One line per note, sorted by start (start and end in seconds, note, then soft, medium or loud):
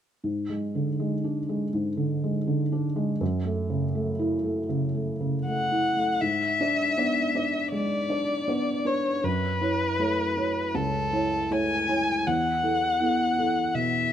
0.24 1.69 G#2 soft
0.49 0.89 G#3 soft
0.75 1.14 D3 soft
1.00 1.39 G#3 soft
1.24 1.64 D4 soft
1.49 1.88 G#3 soft
1.73 3.17 G#2 soft
1.97 2.37 D3 soft
2.24 2.62 G#3 soft
2.47 2.86 D3 soft
2.72 3.11 D4 soft
2.96 3.20 G#3 soft
3.21 4.66 F#2 soft
3.45 3.85 A3 soft
3.70 4.09 C#3 soft
3.95 4.35 A3 soft
4.19 4.60 E4 soft
4.44 4.85 A3 soft
4.69 5.10 C#3 soft
4.94 5.36 A3 soft
5.20 5.61 C#3 soft
5.46 5.87 A3 soft
5.46 6.23 F#5 medium
5.71 6.12 E4 soft
5.96 6.22 A3 soft
6.21 6.58 G#2 soft
6.21 7.72 E5 medium
6.60 6.94 D4 soft
6.60 6.94 D5 soft
6.98 7.31 B3 soft
6.98 7.32 D4 soft
6.98 7.32 D5 soft
7.35 7.69 D4 soft
7.35 7.69 D5 soft
7.72 8.09 G#3 soft
7.72 8.88 D5 medium
8.09 8.44 D4 soft
8.09 8.44 D5 soft
8.48 8.82 B3 soft
8.48 8.82 D4 soft
8.48 8.82 D5 soft
8.85 9.20 D4 soft
8.85 9.20 B4 soft
8.85 9.26 C#5 medium
9.24 9.61 F#2 soft
9.24 10.77 B4 medium
9.61 9.96 E4 soft
9.61 9.96 C#5 soft
9.99 10.33 A3 soft
9.99 10.33 E4 soft
9.99 10.34 C#5 soft
10.37 10.71 E4 soft
10.37 10.71 C#5 soft
10.75 11.12 C#2 soft
10.75 11.54 A4 medium
11.13 11.48 E4 soft
11.13 11.49 C#5 soft
11.51 11.86 A3 soft
11.51 11.86 E4 soft
11.51 11.86 C#5 soft
11.51 12.28 G#5 medium
11.89 12.23 E4 soft
11.89 12.23 C#5 soft
12.27 12.63 E2 soft
12.27 13.76 F#5 medium
12.63 12.97 E4 soft
12.63 12.97 A4 soft
13.00 13.34 B3 soft
13.00 13.35 E4 soft
13.00 13.35 A4 soft
13.39 13.72 E4 soft
13.39 13.72 A4 soft
13.74 14.11 B2 soft
13.74 14.13 E5 medium